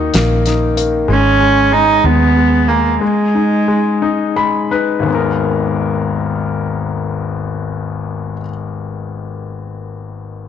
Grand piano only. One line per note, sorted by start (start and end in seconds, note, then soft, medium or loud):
0.00 1.05 D#3 medium
0.00 0.13 A#3 medium
0.00 0.45 D#4 medium
0.14 0.75 A#3 medium
0.46 1.07 D#4 soft
0.77 1.08 A#3 medium
1.08 1.39 G#3 medium
1.40 1.70 G#3 soft
1.72 2.03 G#3 medium
2.04 2.35 G#3 medium
2.37 2.68 G#3 medium
2.69 3.00 G#3 medium
3.01 3.67 G#3 medium
3.35 4.00 D#4 medium
3.68 4.35 G#3 medium
4.02 4.70 D#4 medium
4.36 5.04 G#3 medium
4.36 4.69 B5 medium
4.71 5.06 D#4 medium
4.71 5.05 B4 medium
4.99 8.33 G#1 medium
4.99 8.36 D#2 soft
5.06 8.39 G#3 soft
5.06 8.42 B3 medium
5.12 8.45 D#4 soft
5.12 8.48 A#4 medium